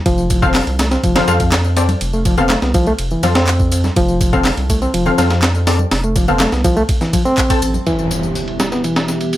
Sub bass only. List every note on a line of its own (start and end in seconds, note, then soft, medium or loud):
0.06 0.61 F1 loud
0.67 0.97 C2 medium
1.03 1.20 F1 medium
1.28 1.95 F2 medium
2.01 2.56 F1 loud
2.62 2.93 C2 medium
2.99 3.15 F1 medium
3.23 3.90 F2 medium
3.96 4.51 F1 loud
4.57 4.88 C2 medium
4.94 5.11 F1 medium
5.18 5.85 F2 medium
5.91 6.46 F1 loud
6.52 6.83 C2 medium
7.62 7.79 A1 medium